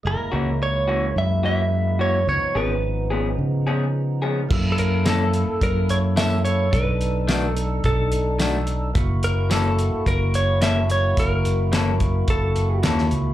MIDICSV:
0, 0, Header, 1, 7, 480
1, 0, Start_track
1, 0, Tempo, 556070
1, 43, Time_signature, 4, 2, 24, 8
1, 11513, End_track
2, 0, Start_track
2, 0, Title_t, "Clean electric guitar"
2, 0, Program_c, 0, 27
2, 61, Note_on_c, 0, 70, 70
2, 537, Note_off_c, 0, 70, 0
2, 541, Note_on_c, 0, 73, 85
2, 980, Note_off_c, 0, 73, 0
2, 1020, Note_on_c, 0, 76, 80
2, 1237, Note_off_c, 0, 76, 0
2, 1257, Note_on_c, 0, 76, 91
2, 1732, Note_off_c, 0, 76, 0
2, 1736, Note_on_c, 0, 73, 76
2, 1965, Note_off_c, 0, 73, 0
2, 1975, Note_on_c, 0, 73, 76
2, 2218, Note_off_c, 0, 73, 0
2, 2218, Note_on_c, 0, 71, 66
2, 2899, Note_off_c, 0, 71, 0
2, 4075, Note_on_c, 0, 69, 54
2, 4131, Note_off_c, 0, 69, 0
2, 4137, Note_on_c, 0, 70, 76
2, 4357, Note_off_c, 0, 70, 0
2, 4375, Note_on_c, 0, 69, 84
2, 4858, Note_off_c, 0, 69, 0
2, 4862, Note_on_c, 0, 70, 86
2, 5097, Note_on_c, 0, 73, 91
2, 5103, Note_off_c, 0, 70, 0
2, 5161, Note_off_c, 0, 73, 0
2, 5330, Note_on_c, 0, 76, 91
2, 5561, Note_off_c, 0, 76, 0
2, 5564, Note_on_c, 0, 73, 86
2, 5810, Note_on_c, 0, 71, 83
2, 5814, Note_off_c, 0, 73, 0
2, 6492, Note_off_c, 0, 71, 0
2, 6492, Note_on_c, 0, 69, 83
2, 6777, Note_off_c, 0, 69, 0
2, 6781, Note_on_c, 0, 69, 71
2, 7222, Note_off_c, 0, 69, 0
2, 7979, Note_on_c, 0, 70, 82
2, 8197, Note_off_c, 0, 70, 0
2, 8216, Note_on_c, 0, 69, 79
2, 8695, Note_off_c, 0, 69, 0
2, 8698, Note_on_c, 0, 70, 82
2, 8937, Note_on_c, 0, 73, 81
2, 8940, Note_off_c, 0, 70, 0
2, 9168, Note_off_c, 0, 73, 0
2, 9172, Note_on_c, 0, 76, 101
2, 9417, Note_off_c, 0, 76, 0
2, 9421, Note_on_c, 0, 73, 92
2, 9638, Note_off_c, 0, 73, 0
2, 9664, Note_on_c, 0, 70, 88
2, 10615, Note_off_c, 0, 70, 0
2, 10619, Note_on_c, 0, 69, 64
2, 11059, Note_off_c, 0, 69, 0
2, 11513, End_track
3, 0, Start_track
3, 0, Title_t, "Tonewheel organ"
3, 0, Program_c, 1, 16
3, 29, Note_on_c, 1, 56, 54
3, 42, Note_on_c, 1, 58, 45
3, 55, Note_on_c, 1, 64, 55
3, 1925, Note_off_c, 1, 56, 0
3, 1932, Note_off_c, 1, 58, 0
3, 1938, Note_off_c, 1, 64, 0
3, 1956, Note_on_c, 1, 53, 55
3, 1971, Note_on_c, 1, 59, 52
3, 1984, Note_on_c, 1, 63, 65
3, 3849, Note_off_c, 1, 53, 0
3, 3857, Note_off_c, 1, 59, 0
3, 3863, Note_off_c, 1, 63, 0
3, 3874, Note_on_c, 1, 58, 70
3, 3888, Note_on_c, 1, 64, 69
3, 3903, Note_on_c, 1, 69, 77
3, 5767, Note_off_c, 1, 58, 0
3, 5774, Note_off_c, 1, 64, 0
3, 5782, Note_off_c, 1, 69, 0
3, 5794, Note_on_c, 1, 62, 62
3, 5807, Note_on_c, 1, 63, 54
3, 5821, Note_on_c, 1, 69, 68
3, 7687, Note_off_c, 1, 62, 0
3, 7693, Note_off_c, 1, 63, 0
3, 7700, Note_off_c, 1, 69, 0
3, 7714, Note_on_c, 1, 58, 79
3, 7726, Note_on_c, 1, 64, 69
3, 7740, Note_on_c, 1, 66, 78
3, 11513, Note_off_c, 1, 58, 0
3, 11513, Note_off_c, 1, 64, 0
3, 11513, Note_off_c, 1, 66, 0
3, 11513, End_track
4, 0, Start_track
4, 0, Title_t, "Clean electric guitar"
4, 0, Program_c, 2, 27
4, 273, Note_on_c, 2, 66, 61
4, 280, Note_on_c, 2, 61, 59
4, 285, Note_on_c, 2, 58, 44
4, 289, Note_on_c, 2, 52, 48
4, 426, Note_off_c, 2, 66, 0
4, 430, Note_off_c, 2, 61, 0
4, 432, Note_off_c, 2, 58, 0
4, 434, Note_off_c, 2, 52, 0
4, 757, Note_on_c, 2, 66, 55
4, 763, Note_on_c, 2, 61, 57
4, 768, Note_on_c, 2, 58, 57
4, 774, Note_on_c, 2, 52, 57
4, 909, Note_off_c, 2, 66, 0
4, 912, Note_off_c, 2, 61, 0
4, 914, Note_off_c, 2, 58, 0
4, 918, Note_off_c, 2, 52, 0
4, 1238, Note_on_c, 2, 66, 60
4, 1245, Note_on_c, 2, 61, 59
4, 1249, Note_on_c, 2, 58, 50
4, 1254, Note_on_c, 2, 52, 52
4, 1390, Note_off_c, 2, 66, 0
4, 1393, Note_off_c, 2, 61, 0
4, 1395, Note_off_c, 2, 58, 0
4, 1398, Note_off_c, 2, 52, 0
4, 1720, Note_on_c, 2, 66, 52
4, 1726, Note_on_c, 2, 61, 53
4, 1730, Note_on_c, 2, 58, 48
4, 1735, Note_on_c, 2, 52, 51
4, 1871, Note_off_c, 2, 66, 0
4, 1875, Note_off_c, 2, 61, 0
4, 1876, Note_off_c, 2, 58, 0
4, 1879, Note_off_c, 2, 52, 0
4, 2203, Note_on_c, 2, 68, 62
4, 2208, Note_on_c, 2, 61, 57
4, 2213, Note_on_c, 2, 59, 53
4, 2218, Note_on_c, 2, 53, 54
4, 2353, Note_off_c, 2, 68, 0
4, 2356, Note_off_c, 2, 61, 0
4, 2358, Note_off_c, 2, 59, 0
4, 2361, Note_off_c, 2, 53, 0
4, 2680, Note_on_c, 2, 68, 67
4, 2688, Note_on_c, 2, 61, 56
4, 2692, Note_on_c, 2, 59, 59
4, 2697, Note_on_c, 2, 53, 51
4, 2832, Note_off_c, 2, 68, 0
4, 2836, Note_off_c, 2, 61, 0
4, 2838, Note_off_c, 2, 59, 0
4, 2840, Note_off_c, 2, 53, 0
4, 3166, Note_on_c, 2, 68, 72
4, 3172, Note_on_c, 2, 61, 64
4, 3178, Note_on_c, 2, 59, 55
4, 3182, Note_on_c, 2, 53, 55
4, 3315, Note_off_c, 2, 68, 0
4, 3318, Note_off_c, 2, 61, 0
4, 3321, Note_off_c, 2, 59, 0
4, 3323, Note_off_c, 2, 53, 0
4, 3643, Note_on_c, 2, 68, 68
4, 3650, Note_on_c, 2, 61, 59
4, 3655, Note_on_c, 2, 59, 54
4, 3659, Note_on_c, 2, 53, 47
4, 3794, Note_off_c, 2, 68, 0
4, 3797, Note_off_c, 2, 61, 0
4, 3800, Note_off_c, 2, 59, 0
4, 3802, Note_off_c, 2, 53, 0
4, 4362, Note_on_c, 2, 52, 71
4, 4368, Note_on_c, 2, 58, 78
4, 4375, Note_on_c, 2, 61, 73
4, 4378, Note_on_c, 2, 69, 82
4, 4514, Note_off_c, 2, 52, 0
4, 4516, Note_off_c, 2, 58, 0
4, 4520, Note_off_c, 2, 61, 0
4, 4521, Note_off_c, 2, 69, 0
4, 5321, Note_on_c, 2, 52, 66
4, 5327, Note_on_c, 2, 58, 62
4, 5332, Note_on_c, 2, 61, 72
4, 5337, Note_on_c, 2, 69, 73
4, 5473, Note_off_c, 2, 52, 0
4, 5476, Note_off_c, 2, 58, 0
4, 5479, Note_off_c, 2, 61, 0
4, 5481, Note_off_c, 2, 69, 0
4, 6282, Note_on_c, 2, 51, 77
4, 6288, Note_on_c, 2, 57, 72
4, 6294, Note_on_c, 2, 62, 86
4, 6299, Note_on_c, 2, 66, 78
4, 6434, Note_off_c, 2, 51, 0
4, 6436, Note_off_c, 2, 57, 0
4, 6440, Note_off_c, 2, 62, 0
4, 6442, Note_off_c, 2, 66, 0
4, 7242, Note_on_c, 2, 51, 62
4, 7249, Note_on_c, 2, 57, 61
4, 7252, Note_on_c, 2, 62, 76
4, 7259, Note_on_c, 2, 66, 74
4, 7393, Note_off_c, 2, 51, 0
4, 7397, Note_off_c, 2, 57, 0
4, 7398, Note_off_c, 2, 62, 0
4, 7402, Note_off_c, 2, 66, 0
4, 8199, Note_on_c, 2, 52, 76
4, 8207, Note_on_c, 2, 58, 82
4, 8210, Note_on_c, 2, 61, 73
4, 8216, Note_on_c, 2, 69, 82
4, 8352, Note_off_c, 2, 52, 0
4, 8355, Note_off_c, 2, 58, 0
4, 8357, Note_off_c, 2, 61, 0
4, 8360, Note_off_c, 2, 69, 0
4, 9161, Note_on_c, 2, 52, 63
4, 9167, Note_on_c, 2, 58, 66
4, 9172, Note_on_c, 2, 61, 61
4, 9176, Note_on_c, 2, 69, 75
4, 9312, Note_off_c, 2, 52, 0
4, 9315, Note_off_c, 2, 58, 0
4, 9318, Note_off_c, 2, 61, 0
4, 9320, Note_off_c, 2, 69, 0
4, 10117, Note_on_c, 2, 52, 65
4, 10123, Note_on_c, 2, 58, 76
4, 10130, Note_on_c, 2, 61, 71
4, 10133, Note_on_c, 2, 69, 73
4, 10270, Note_off_c, 2, 52, 0
4, 10273, Note_off_c, 2, 58, 0
4, 10276, Note_off_c, 2, 61, 0
4, 10278, Note_off_c, 2, 69, 0
4, 11076, Note_on_c, 2, 52, 64
4, 11084, Note_on_c, 2, 58, 68
4, 11088, Note_on_c, 2, 61, 69
4, 11093, Note_on_c, 2, 69, 68
4, 11229, Note_off_c, 2, 52, 0
4, 11233, Note_off_c, 2, 58, 0
4, 11235, Note_off_c, 2, 61, 0
4, 11237, Note_off_c, 2, 69, 0
4, 11513, End_track
5, 0, Start_track
5, 0, Title_t, "Fingered electric bass"
5, 0, Program_c, 3, 33
5, 42, Note_on_c, 3, 30, 72
5, 158, Note_off_c, 3, 30, 0
5, 285, Note_on_c, 3, 37, 72
5, 971, Note_off_c, 3, 37, 0
5, 1001, Note_on_c, 3, 42, 78
5, 1930, Note_off_c, 3, 42, 0
5, 1962, Note_on_c, 3, 37, 78
5, 2080, Note_off_c, 3, 37, 0
5, 2203, Note_on_c, 3, 32, 68
5, 2891, Note_off_c, 3, 32, 0
5, 2921, Note_on_c, 3, 49, 72
5, 3851, Note_off_c, 3, 49, 0
5, 3889, Note_on_c, 3, 42, 93
5, 4700, Note_off_c, 3, 42, 0
5, 4847, Note_on_c, 3, 42, 82
5, 5774, Note_off_c, 3, 42, 0
5, 5810, Note_on_c, 3, 35, 90
5, 6735, Note_off_c, 3, 35, 0
5, 6769, Note_on_c, 3, 35, 74
5, 7694, Note_off_c, 3, 35, 0
5, 7727, Note_on_c, 3, 30, 83
5, 8538, Note_off_c, 3, 30, 0
5, 8686, Note_on_c, 3, 30, 80
5, 9612, Note_off_c, 3, 30, 0
5, 9645, Note_on_c, 3, 30, 94
5, 10571, Note_off_c, 3, 30, 0
5, 10601, Note_on_c, 3, 30, 80
5, 11049, Note_off_c, 3, 30, 0
5, 11081, Note_on_c, 3, 39, 76
5, 11299, Note_off_c, 3, 39, 0
5, 11323, Note_on_c, 3, 37, 82
5, 11513, Note_off_c, 3, 37, 0
5, 11513, End_track
6, 0, Start_track
6, 0, Title_t, "Muted fingered electric bass strokes"
6, 2092, Note_on_c, 9, 29, 29
6, 2178, Note_off_c, 9, 29, 0
6, 4735, Note_on_c, 9, 29, 35
6, 4821, Note_off_c, 9, 29, 0
6, 8580, Note_on_c, 9, 29, 37
6, 8667, Note_off_c, 9, 29, 0
6, 11513, End_track
7, 0, Start_track
7, 0, Title_t, "Drums"
7, 3889, Note_on_c, 9, 36, 104
7, 3890, Note_on_c, 9, 49, 93
7, 3975, Note_off_c, 9, 36, 0
7, 3976, Note_off_c, 9, 49, 0
7, 4127, Note_on_c, 9, 42, 60
7, 4213, Note_off_c, 9, 42, 0
7, 4365, Note_on_c, 9, 42, 85
7, 4365, Note_on_c, 9, 54, 102
7, 4369, Note_on_c, 9, 38, 107
7, 4451, Note_off_c, 9, 42, 0
7, 4451, Note_off_c, 9, 54, 0
7, 4455, Note_off_c, 9, 38, 0
7, 4605, Note_on_c, 9, 42, 55
7, 4691, Note_off_c, 9, 42, 0
7, 4846, Note_on_c, 9, 36, 77
7, 4847, Note_on_c, 9, 42, 73
7, 4933, Note_off_c, 9, 36, 0
7, 4933, Note_off_c, 9, 42, 0
7, 5087, Note_on_c, 9, 42, 66
7, 5173, Note_off_c, 9, 42, 0
7, 5327, Note_on_c, 9, 42, 80
7, 5327, Note_on_c, 9, 54, 112
7, 5331, Note_on_c, 9, 38, 101
7, 5413, Note_off_c, 9, 42, 0
7, 5413, Note_off_c, 9, 54, 0
7, 5417, Note_off_c, 9, 38, 0
7, 5570, Note_on_c, 9, 42, 54
7, 5656, Note_off_c, 9, 42, 0
7, 5808, Note_on_c, 9, 36, 109
7, 5810, Note_on_c, 9, 42, 76
7, 5895, Note_off_c, 9, 36, 0
7, 5896, Note_off_c, 9, 42, 0
7, 6049, Note_on_c, 9, 42, 57
7, 6135, Note_off_c, 9, 42, 0
7, 6289, Note_on_c, 9, 42, 83
7, 6289, Note_on_c, 9, 54, 116
7, 6293, Note_on_c, 9, 38, 107
7, 6375, Note_off_c, 9, 42, 0
7, 6375, Note_off_c, 9, 54, 0
7, 6379, Note_off_c, 9, 38, 0
7, 6530, Note_on_c, 9, 42, 52
7, 6616, Note_off_c, 9, 42, 0
7, 6766, Note_on_c, 9, 42, 68
7, 6769, Note_on_c, 9, 36, 82
7, 6852, Note_off_c, 9, 42, 0
7, 6855, Note_off_c, 9, 36, 0
7, 7006, Note_on_c, 9, 42, 58
7, 7092, Note_off_c, 9, 42, 0
7, 7246, Note_on_c, 9, 42, 77
7, 7246, Note_on_c, 9, 54, 110
7, 7251, Note_on_c, 9, 38, 101
7, 7333, Note_off_c, 9, 42, 0
7, 7333, Note_off_c, 9, 54, 0
7, 7337, Note_off_c, 9, 38, 0
7, 7483, Note_on_c, 9, 42, 53
7, 7569, Note_off_c, 9, 42, 0
7, 7727, Note_on_c, 9, 42, 80
7, 7728, Note_on_c, 9, 36, 113
7, 7813, Note_off_c, 9, 42, 0
7, 7814, Note_off_c, 9, 36, 0
7, 7966, Note_on_c, 9, 42, 60
7, 8052, Note_off_c, 9, 42, 0
7, 8206, Note_on_c, 9, 42, 90
7, 8206, Note_on_c, 9, 54, 108
7, 8211, Note_on_c, 9, 38, 105
7, 8293, Note_off_c, 9, 42, 0
7, 8293, Note_off_c, 9, 54, 0
7, 8297, Note_off_c, 9, 38, 0
7, 8447, Note_on_c, 9, 42, 65
7, 8533, Note_off_c, 9, 42, 0
7, 8687, Note_on_c, 9, 36, 76
7, 8689, Note_on_c, 9, 42, 76
7, 8773, Note_off_c, 9, 36, 0
7, 8775, Note_off_c, 9, 42, 0
7, 8926, Note_on_c, 9, 42, 66
7, 9012, Note_off_c, 9, 42, 0
7, 9164, Note_on_c, 9, 42, 85
7, 9164, Note_on_c, 9, 54, 112
7, 9168, Note_on_c, 9, 38, 116
7, 9250, Note_off_c, 9, 42, 0
7, 9250, Note_off_c, 9, 54, 0
7, 9254, Note_off_c, 9, 38, 0
7, 9405, Note_on_c, 9, 42, 60
7, 9492, Note_off_c, 9, 42, 0
7, 9644, Note_on_c, 9, 36, 100
7, 9644, Note_on_c, 9, 42, 80
7, 9730, Note_off_c, 9, 42, 0
7, 9731, Note_off_c, 9, 36, 0
7, 9884, Note_on_c, 9, 42, 61
7, 9971, Note_off_c, 9, 42, 0
7, 10122, Note_on_c, 9, 42, 85
7, 10122, Note_on_c, 9, 54, 103
7, 10127, Note_on_c, 9, 38, 106
7, 10209, Note_off_c, 9, 42, 0
7, 10209, Note_off_c, 9, 54, 0
7, 10213, Note_off_c, 9, 38, 0
7, 10360, Note_on_c, 9, 42, 58
7, 10362, Note_on_c, 9, 36, 72
7, 10446, Note_off_c, 9, 42, 0
7, 10448, Note_off_c, 9, 36, 0
7, 10598, Note_on_c, 9, 42, 74
7, 10601, Note_on_c, 9, 36, 78
7, 10684, Note_off_c, 9, 42, 0
7, 10687, Note_off_c, 9, 36, 0
7, 10839, Note_on_c, 9, 42, 58
7, 10925, Note_off_c, 9, 42, 0
7, 11077, Note_on_c, 9, 42, 74
7, 11077, Note_on_c, 9, 54, 109
7, 11082, Note_on_c, 9, 38, 109
7, 11164, Note_off_c, 9, 42, 0
7, 11164, Note_off_c, 9, 54, 0
7, 11168, Note_off_c, 9, 38, 0
7, 11207, Note_on_c, 9, 38, 31
7, 11293, Note_off_c, 9, 38, 0
7, 11317, Note_on_c, 9, 42, 51
7, 11404, Note_off_c, 9, 42, 0
7, 11513, End_track
0, 0, End_of_file